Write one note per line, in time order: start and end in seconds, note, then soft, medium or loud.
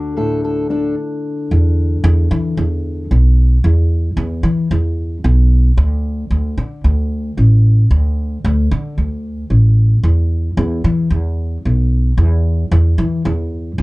0.00 0.95 D2 medium
0.00 3.11 D3 medium
0.00 0.69 D4 medium
0.00 0.95 F#4 soft
0.00 0.16 A4 medium
0.16 0.94 A2 medium
0.16 0.43 A4 medium
0.44 0.69 A4 medium
0.70 0.94 D4 soft
0.70 0.94 A4 soft
1.51 1.97 E2 loud
2.04 2.27 E2 loud
2.31 2.54 E3 loud
2.57 3.03 E2 loud
3.11 3.56 B1 loud
3.64 4.10 E2 loud
4.17 4.40 E2 loud
4.43 4.66 E3 loud
4.71 5.16 E2 loud
5.24 5.70 B1 loud
5.77 6.23 D2 loud
6.31 6.53 D2 loud
6.57 6.80 D3 loud
6.84 7.30 D2 loud
7.37 7.83 A1 loud
7.91 8.36 D2 loud
8.44 8.67 D2 loud
8.71 8.94 D3 loud
8.98 9.43 D2 medium
9.50 9.96 A1 medium
10.03 10.49 E2 loud
10.57 10.80 E2 loud
10.84 11.07 E3 loud
11.10 11.56 E2 loud
11.65 12.10 B1 medium
12.18 12.63 E2 loud
12.71 12.94 E2 loud
12.98 13.21 E3 loud
13.25 13.70 E2 loud
13.78 13.82 A1 loud